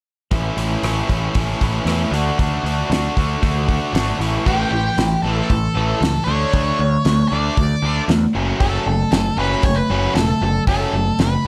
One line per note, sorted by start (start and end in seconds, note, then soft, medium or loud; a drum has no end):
0.31 0.49 A1 medium
0.31 0.57 A2 medium
0.31 0.58 E3 medium
0.31 0.59 A3 medium
0.31 0.58 C#4 medium
0.31 0.58 E4 medium
0.31 kick medium
0.31 open hi-hat soft
0.57 0.75 A1 medium
0.57 0.82 A2 medium
0.57 0.83 E3 medium
0.57 0.84 A3 medium
0.57 0.84 C#4 medium
0.57 0.84 E4 medium
0.57 open hi-hat medium
0.83 1.01 A1 medium
0.83 1.08 A2 medium
0.83 1.09 E3 medium
0.83 1.10 A3 medium
0.83 1.10 C#4 medium
0.83 1.10 E4 medium
0.83 cross-stick medium
0.83 open hi-hat medium
1.09 1.27 A1 medium
1.09 1.34 A2 medium
1.09 1.35 E3 medium
1.09 1.36 A3 medium
1.09 1.35 C#4 medium
1.09 1.36 E4 medium
1.09 kick medium
1.09 open hi-hat soft
1.35 1.53 A1 medium
1.35 1.61 A2 medium
1.35 1.61 E3 medium
1.35 1.62 A3 loud
1.35 1.62 C#4 loud
1.35 1.62 E4 medium
1.35 kick loud
1.35 open hi-hat medium
1.61 1.79 A1 medium
1.61 1.86 A2 medium
1.61 1.86 E3 medium
1.61 1.88 A3 medium
1.61 1.87 C#4 medium
1.61 1.87 E4 medium
1.61 kick medium
1.61 open hi-hat medium
1.85 2.04 E2 medium
1.85 2.11 A2 medium
1.85 2.11 E3 medium
1.85 2.12 A3 medium
1.85 2.12 C#4 medium
1.85 2.12 E4 medium
1.85 cross-stick medium
1.85 open hi-hat medium
2.11 2.30 D2 medium
2.11 2.37 D3 medium
2.11 2.37 A3 medium
2.11 2.38 D4 medium
2.11 2.38 F#4 medium
2.11 open hi-hat soft
2.38 2.57 D2 medium
2.38 2.63 D3 medium
2.38 2.63 A3 medium
2.38 2.64 D4 medium
2.38 2.64 F#4 medium
2.38 kick loud
2.38 open hi-hat medium
2.63 2.82 D2 medium
2.63 2.89 D3 medium
2.63 2.89 A3 medium
2.63 2.90 D4 medium
2.63 2.90 F#4 medium
2.63 open hi-hat soft
2.90 3.08 D2 medium
2.90 3.14 D3 medium
2.90 3.14 A3 medium
2.90 3.15 D4 medium
2.90 3.15 F#4 medium
2.90 snare loud
2.90 open hi-hat medium
3.15 3.35 D2 medium
3.15 3.41 D3 medium
3.15 3.41 A3 medium
3.15 3.42 D4 medium
3.15 3.42 F#4 medium
3.15 kick medium
3.15 open hi-hat soft
3.42 3.78 D2 medium
3.42 3.66 D3 medium
3.42 3.66 A3 medium
3.42 3.66 D4 medium
3.42 3.67 F#4 medium
3.42 kick loud
3.42 open hi-hat medium
3.67 3.92 D3 medium
3.67 3.92 A3 medium
3.67 3.92 D4 medium
3.67 3.92 F#4 medium
3.67 kick medium
3.67 open hi-hat soft
3.93 4.12 G#1 medium
3.93 4.18 D3 medium
3.93 4.17 A3 medium
3.93 4.18 D4 medium
3.93 4.18 F#4 medium
3.93 snare loud
3.93 open hi-hat medium
4.17 4.37 A1 medium
4.17 4.43 A2 medium
4.17 4.44 E3 medium
4.17 4.44 A3 loud
4.17 4.44 C#4 medium
4.17 4.44 E4 medium
4.17 open hi-hat soft
4.45 4.63 A1 loud
4.45 4.70 A2 medium
4.45 4.70 E3 medium
4.45 4.70 A3 loud
4.45 5.20 G4 medium
4.45 kick medium
4.45 crash medium
4.71 4.88 A1 medium
4.71 4.95 A2 medium
4.71 4.95 E3 medium
4.97 5.15 A1 medium
4.97 5.21 A2 medium
4.97 5.21 E3 medium
4.97 snare loud
4.97 open hi-hat medium
5.22 5.40 A1 medium
5.22 5.48 A2 medium
5.22 5.49 E3 loud
5.22 5.49 A3 loud
5.22 6.30 A4 medium
5.50 5.67 A1 medium
5.50 5.73 A2 medium
5.50 5.74 E3 medium
5.50 kick loud
5.50 open hi-hat soft
5.74 5.93 A1 medium
5.74 5.99 A2 medium
5.74 6.00 E3 medium
5.74 6.00 A3 medium
6.00 6.18 C#2 medium
6.00 6.24 A2 medium
6.00 6.24 E3 medium
6.00 snare loud
6.00 open hi-hat soft
6.24 6.44 D2 medium
6.24 6.51 D3 medium
6.24 6.52 A3 medium
6.24 6.52 D4 medium
6.24 7.25 C#5 medium
6.52 6.70 D2 medium
6.52 6.77 D3 medium
6.52 6.77 A3 medium
6.52 6.78 D4 medium
6.52 kick medium
6.52 open hi-hat soft
6.78 6.96 D2 medium
6.78 7.02 D3 medium
6.78 7.02 A3 medium
7.05 7.22 D2 medium
7.05 7.28 D3 medium
7.05 7.29 A3 medium
7.05 snare loud
7.05 open hi-hat soft
7.28 7.49 D2 medium
7.28 7.55 D3 medium
7.28 7.55 A3 medium
7.28 7.55 D4 medium
7.28 8.03 D5 medium
7.56 7.74 D2 medium
7.56 7.80 D3 medium
7.56 7.80 A3 medium
7.56 kick loud
7.56 open hi-hat soft
7.82 8.00 D2 medium
7.82 8.07 D3 medium
7.82 8.07 A3 medium
7.82 8.07 D4 medium
8.08 8.25 E2 medium
8.08 8.32 D3 medium
8.08 8.32 A3 medium
8.08 snare loud
8.08 open hi-hat soft
8.33 8.52 F#1 medium
8.33 8.58 F#2 medium
8.33 8.58 C#3 medium
8.33 8.59 F#3 medium
8.33 8.59 A3 medium
8.33 8.59 C#4 medium
8.59 8.78 F#1 medium
8.59 8.84 F#2 medium
8.59 8.84 C#3 medium
8.59 8.85 F#3 medium
8.59 8.85 A3 medium
8.59 8.85 C#4 medium
8.59 9.39 A4 medium
8.59 kick medium
8.59 open hi-hat soft
8.86 9.03 F#1 medium
8.86 9.09 F#2 medium
8.86 9.10 C#3 medium
8.86 9.10 F#3 medium
8.86 9.10 A3 medium
9.11 9.29 F#1 medium
9.11 9.35 F#2 medium
9.11 9.35 C#3 medium
9.11 9.36 F#3 medium
9.11 9.36 A3 medium
9.11 snare loud
9.11 open hi-hat medium
9.37 9.54 F#1 medium
9.37 9.62 F#2 medium
9.37 9.62 C#3 medium
9.37 9.62 F#3 loud
9.37 9.63 A3 medium
9.37 9.63 C#4 loud
9.37 9.65 B4 medium
9.63 9.81 F#1 medium
9.63 9.87 F#2 medium
9.63 9.87 C#3 medium
9.63 9.88 F#3 medium
9.63 9.88 A3 medium
9.63 9.77 C#5 medium
9.63 kick loud
9.63 open hi-hat medium
9.76 10.14 B4 loud
9.90 10.07 F#1 medium
9.90 10.14 F#2 medium
9.90 10.14 C#3 medium
9.90 10.15 F#3 medium
9.90 10.15 A3 medium
9.90 10.15 C#4 loud
10.15 10.32 E1 medium
10.15 10.39 F#2 medium
10.15 10.39 C#3 medium
10.15 10.39 F#3 medium
10.15 10.39 A3 medium
10.15 10.63 A4 medium
10.15 snare medium
10.15 open hi-hat soft
10.41 10.58 F#1 medium
10.41 10.65 F#2 medium
10.41 10.65 C#3 medium
10.41 10.65 F#3 medium
10.41 10.65 A3 medium
10.67 10.84 F#1 medium
10.67 10.92 F#2 medium
10.67 10.92 C#3 medium
10.67 10.92 F#3 medium
10.67 10.93 A3 medium
10.67 10.93 C#4 medium
10.67 11.21 A4 medium
10.67 kick medium
10.67 open hi-hat soft
10.93 11.10 F#1 medium
10.93 11.17 F#2 medium
10.93 11.17 C#3 medium
10.93 11.17 F#3 medium
10.93 11.17 A3 medium
11.19 11.36 F#1 medium
11.19 11.43 F#2 medium
11.19 11.43 C#3 medium
11.19 11.42 F#3 medium
11.19 11.42 A3 medium
11.19 11.47 B4 medium
11.19 snare loud
11.19 open hi-hat soft